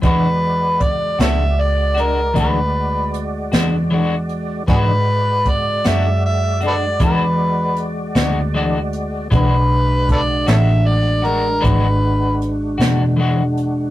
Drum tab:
HH |x-xx-xx-xx-x|x-xx-xx-xx-x|x-xx-xx-xx-x|
SD |---o-----o--|---o-----o--|---o-----o--|
BD |o-o---o-----|o-o---o-----|o-o---o-----|